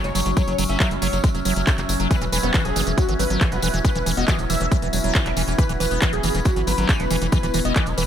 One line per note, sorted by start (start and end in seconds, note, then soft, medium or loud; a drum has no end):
0.00 8.07 F#3 medium
0.00 3.75 C#4 medium
0.00 8.07 C#4 medium
0.00 3.07 F#4 medium
0.00 8.07 E5 medium
0.00 3.45 C#6 medium
0.04 0.12 F#1 medium
0.04 0.10 G#3 loud
0.04 0.23 C#5 medium
0.04 closed hi-hat medium
0.04 tambourine soft
0.15 0.23 F#1 loud
0.15 0.21 F#3 loud
0.15 open hi-hat loud
0.15 tambourine medium
0.26 0.34 F#1 loud
0.26 0.31 F#3 medium
0.26 closed hi-hat medium
0.37 0.42 F#3 loud
0.37 0.56 C#5 loud
0.37 kick loud
0.37 closed hi-hat medium
0.37 tambourine medium
0.47 0.55 F#1 medium
0.47 0.53 F#3 medium
0.47 closed hi-hat soft
0.47 tambourine soft
0.58 0.66 F#1 loud
0.58 0.64 F#3 loud
0.58 open hi-hat loud
0.58 tambourine loud
0.69 0.77 F#1 medium
0.69 0.78 C#4 medium
0.69 0.89 E5 loud
0.69 closed hi-hat medium
0.69 tambourine soft
0.80 0.93 F#3 loud
0.80 kick loud
0.80 clap loud
0.80 closed hi-hat medium
0.80 tambourine medium
0.91 0.99 F#1 medium
0.91 0.97 G#3 loud
0.91 closed hi-hat medium
0.91 tambourine soft
1.02 1.10 F#1 loud
1.02 1.08 F#3 loud
1.02 1.21 C#5 loud
1.02 open hi-hat loud
1.02 tambourine medium
1.13 1.20 F#1 medium
1.13 1.18 F#3 medium
1.13 closed hi-hat medium
1.13 tambourine soft
1.24 1.29 G#3 medium
1.24 kick loud
1.24 closed hi-hat medium
1.24 tambourine medium
1.35 1.42 F#1 medium
1.35 1.40 F#3 medium
1.35 closed hi-hat medium
1.35 tambourine soft
1.45 1.53 F#1 loud
1.45 1.54 F#3 loud
1.45 open hi-hat loud
1.45 tambourine medium
1.56 1.64 F#1 medium
1.56 1.62 F#3 medium
1.56 closed hi-hat medium
1.56 tambourine soft
1.67 1.71 C#4 medium
1.67 kick loud
1.67 clap loud
1.67 closed hi-hat medium
1.67 tambourine medium
1.78 1.86 F#1 medium
1.78 1.81 E3 medium
1.78 clap soft
1.78 closed hi-hat medium
1.78 tambourine soft
1.89 1.97 F#1 loud
1.89 1.95 F#3 medium
1.89 open hi-hat loud
1.89 tambourine loud
2.00 2.07 F#1 loud
2.00 2.08 F#3 medium
2.00 closed hi-hat medium
2.00 tambourine soft
2.11 2.16 E3 loud
2.11 8.07 B3 medium
2.11 2.24 B4 loud
2.11 kick loud
2.11 closed hi-hat medium
2.11 tambourine medium
2.21 2.29 E1 medium
2.21 2.25 E3 loud
2.21 closed hi-hat soft
2.21 tambourine soft
2.32 2.40 E1 loud
2.32 2.38 E3 loud
2.32 8.07 E4 medium
2.32 2.52 B4 medium
2.32 open hi-hat loud
2.32 tambourine loud
2.43 2.51 E1 medium
2.43 2.52 B3 medium
2.43 2.54 B3 medium
2.43 closed hi-hat soft
2.43 tambourine soft
2.54 2.67 E3 loud
2.54 kick loud
2.54 clap loud
2.54 closed hi-hat medium
2.54 tambourine soft
2.65 2.73 E1 medium
2.65 2.71 F#3 loud
2.65 2.84 G#4 loud
2.65 closed hi-hat medium
2.65 tambourine soft
2.76 2.84 F#1 loud
2.76 2.81 E3 loud
2.76 2.87 C#4 loud
2.76 open hi-hat medium
2.76 tambourine loud
2.87 2.94 E1 medium
2.87 2.92 E3 medium
2.87 closed hi-hat medium
2.87 tambourine soft
2.98 3.03 F#3 medium
2.98 3.10 F#4 medium
2.98 8.07 B5 medium
2.98 kick loud
2.98 closed hi-hat medium
2.98 tambourine soft
3.09 3.16 G#1 medium
3.09 3.14 E3 medium
3.09 closed hi-hat soft
3.09 tambourine soft
3.19 3.27 G#1 loud
3.19 3.25 F#3 medium
3.19 3.39 B4 loud
3.19 open hi-hat loud
3.19 tambourine medium
3.30 3.38 G#1 medium
3.30 3.43 F#3 medium
3.30 closed hi-hat medium
3.30 tambourine soft
3.41 3.53 E3 medium
3.41 kick loud
3.41 clap loud
3.41 closed hi-hat medium
3.41 tambourine medium
3.52 3.60 E1 medium
3.52 3.58 F#3 loud
3.52 3.63 F#4 medium
3.52 3.71 B4 medium
3.52 closed hi-hat medium
3.52 tambourine soft
3.62 3.70 E1 loud
3.62 3.68 E3 loud
3.62 open hi-hat loud
3.62 tambourine loud
3.74 3.81 E1 medium
3.74 3.79 E3 medium
3.74 closed hi-hat medium
3.74 tambourine soft
3.85 3.90 E3 loud
3.85 4.04 B4 loud
3.85 kick loud
3.85 closed hi-hat medium
3.85 tambourine medium
3.95 4.03 E1 medium
3.95 3.99 E3 loud
3.95 closed hi-hat medium
3.95 tambourine soft
4.06 4.14 E1 loud
4.06 4.12 E3 loud
4.06 open hi-hat loud
4.06 tambourine medium
4.17 4.25 E1 loud
4.17 4.26 B3 medium
4.17 4.24 F#4 medium
4.17 4.36 D#5 loud
4.17 closed hi-hat medium
4.17 tambourine soft
4.28 4.41 E3 loud
4.28 4.35 F#4 medium
4.28 kick loud
4.28 clap loud
4.28 closed hi-hat medium
4.28 tambourine medium
4.39 4.47 E1 medium
4.39 4.45 F#3 loud
4.39 closed hi-hat medium
4.39 tambourine soft
4.50 4.57 E1 loud
4.50 4.55 E3 loud
4.50 4.69 E5 loud
4.50 open hi-hat medium
4.50 tambourine loud
4.60 4.68 E1 medium
4.60 4.66 E3 medium
4.60 closed hi-hat medium
4.60 tambourine soft
4.72 4.77 F#3 medium
4.72 kick loud
4.72 closed hi-hat medium
4.72 tambourine medium
4.82 4.90 E1 medium
4.82 4.88 E3 medium
4.82 closed hi-hat medium
4.82 tambourine soft
4.93 5.01 E1 loud
4.93 4.99 F#3 medium
4.93 open hi-hat loud
4.93 tambourine medium
5.04 5.12 E1 medium
5.04 5.17 F#3 medium
5.04 closed hi-hat medium
5.04 tambourine soft
5.15 5.27 E3 medium
5.15 kick loud
5.15 clap loud
5.15 closed hi-hat medium
5.15 tambourine medium
5.26 5.34 E1 medium
5.26 5.31 F#3 loud
5.26 clap soft
5.26 closed hi-hat medium
5.26 tambourine soft
5.37 5.44 E1 loud
5.37 5.42 E3 loud
5.37 open hi-hat medium
5.37 tambourine medium
5.48 5.55 E1 medium
5.48 5.53 E3 medium
5.48 closed hi-hat medium
5.48 tambourine soft
5.58 5.64 E3 loud
5.58 5.71 B4 loud
5.58 kick loud
5.58 closed hi-hat medium
5.58 tambourine soft
5.69 5.77 E1 medium
5.69 5.73 E3 loud
5.69 closed hi-hat medium
5.69 tambourine soft
5.80 5.88 E1 loud
5.80 5.86 E3 loud
5.80 5.99 B4 loud
5.80 open hi-hat loud
5.80 tambourine medium
5.91 5.99 E1 medium
5.91 6.00 B3 medium
5.91 closed hi-hat medium
5.91 tambourine soft
6.01 6.14 E3 loud
6.01 kick loud
6.01 clap loud
6.01 closed hi-hat medium
6.01 tambourine medium
6.13 6.20 E1 medium
6.13 6.18 F#3 loud
6.13 6.32 G#4 medium
6.13 closed hi-hat medium
6.13 tambourine soft
6.23 6.31 F#1 loud
6.23 6.29 E3 loud
6.23 open hi-hat medium
6.23 tambourine medium
6.35 6.42 E1 medium
6.35 6.40 E3 medium
6.35 closed hi-hat medium
6.35 tambourine soft
6.45 6.51 F#3 medium
6.45 6.58 F#4 loud
6.45 kick loud
6.45 closed hi-hat medium
6.45 tambourine medium
6.56 6.64 G#1 medium
6.56 6.62 E3 medium
6.56 closed hi-hat medium
6.56 tambourine soft
6.67 6.75 G#1 medium
6.67 6.73 F#3 medium
6.67 6.86 B4 loud
6.67 open hi-hat loud
6.67 tambourine medium
6.78 6.86 G#1 medium
6.78 6.90 F#3 medium
6.78 closed hi-hat medium
6.78 tambourine soft
6.89 7.01 E3 medium
6.89 kick loud
6.89 clap loud
6.89 closed hi-hat medium
6.89 tambourine soft
6.99 7.07 E1 medium
6.99 7.05 F#3 loud
6.99 7.19 B4 medium
6.99 closed hi-hat medium
6.99 tambourine soft
7.10 7.18 E1 loud
7.10 7.16 E3 loud
7.10 open hi-hat medium
7.10 tambourine loud
7.22 7.29 E1 medium
7.22 7.27 E3 medium
7.22 closed hi-hat medium
7.22 tambourine soft
7.32 7.38 E3 loud
7.32 7.52 B4 loud
7.32 kick loud
7.32 closed hi-hat medium
7.32 tambourine medium
7.43 7.51 E1 medium
7.43 7.47 E3 loud
7.43 closed hi-hat medium
7.43 tambourine soft
7.54 7.62 E1 loud
7.54 7.60 E3 loud
7.54 open hi-hat loud
7.54 tambourine medium
7.65 7.73 E1 medium
7.65 7.73 B3 medium
7.65 7.84 D#5 loud
7.65 closed hi-hat medium
7.65 tambourine soft
7.76 7.88 E3 loud
7.76 kick loud
7.76 clap loud
7.76 closed hi-hat medium
7.76 tambourine medium
7.86 7.94 E1 medium
7.86 7.92 F#3 loud
7.86 closed hi-hat medium
7.86 tambourine soft
7.98 8.05 E1 loud
7.98 8.03 E3 loud
7.98 8.07 B4 loud
7.98 open hi-hat medium
7.98 tambourine medium